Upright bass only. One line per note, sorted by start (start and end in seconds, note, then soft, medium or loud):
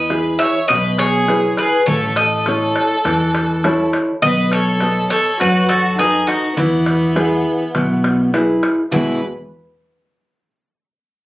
0.00 0.35 E2 loud
0.70 1.52 B1 medium
1.87 2.70 A1 loud
3.05 3.87 E2 medium
4.22 5.05 B1 loud
5.41 6.23 F#2 medium
6.58 7.40 E2 loud
7.76 8.58 B1 medium
8.94 9.21 E2 medium